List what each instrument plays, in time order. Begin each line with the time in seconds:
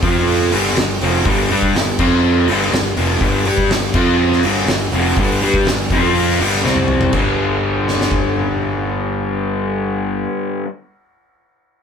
0.03 fingered electric bass F2, overdriven electric guitar F3 C4 F4, kick, open hi-hat
0.27 open hi-hat
0.41 snare
0.52 fingered electric bass G1, overdriven electric guitar G2 D3 G3, open hi-hat
0.65 snare
0.75 fingered electric bass G1, overdriven electric guitar G2 D3, snare, open hi-hat
1.01 fingered electric bass F1, overdriven electric guitar F2 C3 F3, open hi-hat
1.25 fingered electric bass G1, overdriven electric guitar G2 D3 G3, kick, open hi-hat
1.50 fingered electric bass G2, overdriven electric guitar G3 D4 G4, open hi-hat
1.62 kick
1.74 fingered electric bass G1, overdriven electric guitar G2 D3, snare, open hi-hat
1.99 fingered electric bass F2, overdriven electric guitar F3 C4 F4, kick, crash
2.47 fingered electric bass G1, overdriven electric guitar G2 D3 G3, open hi-hat
2.62 snare
2.72 fingered electric bass G1, overdriven electric guitar G2 D3, snare, open hi-hat
2.97 fingered electric bass F1, overdriven electric guitar F2 C3 F3, open hi-hat
3.20 fingered electric bass G1, overdriven electric guitar G2 D3 G3, kick, open hi-hat
3.45 fingered electric bass G2, overdriven electric guitar G3 D4 G4, open hi-hat
3.58 kick
3.69 fingered electric bass G1, overdriven electric guitar G2 D3, snare, open hi-hat
3.94 fingered electric bass F2, overdriven electric guitar F3 C4 F4, kick, crash
4.32 snare
4.43 fingered electric bass G1, overdriven electric guitar G2 D3 G3, open hi-hat
4.56 snare
4.67 fingered electric bass G1, overdriven electric guitar G2 D3, snare, open hi-hat
4.92 fingered electric bass F1, overdriven electric guitar F2 C3 F3, open hi-hat
5.16 fingered electric bass G1, overdriven electric guitar G2 D3 G3, kick, open hi-hat
5.41 fingered electric bass G2, overdriven electric guitar G3 D4 G4, open hi-hat
5.54 kick
5.65 fingered electric bass G1, overdriven electric guitar G2 D3, snare, open hi-hat
5.90 fingered electric bass F2, overdriven electric guitar F3 C4 F4, kick, open hi-hat
6.15 open hi-hat
6.29 snare
6.40 fingered electric bass G1, overdriven electric guitar G2 D3 G3, open hi-hat
6.54 snare
6.64 fingered electric bass C2, overdriven electric guitar C3 G3 C4, snare
6.76 high tom
6.88 mid tom
7.01 floor tom
7.13 fingered electric bass G1, overdriven electric guitar G2 D3, kick, crash
7.17 overdriven electric guitar G3
7.88 snare
8.01 snare
8.12 kick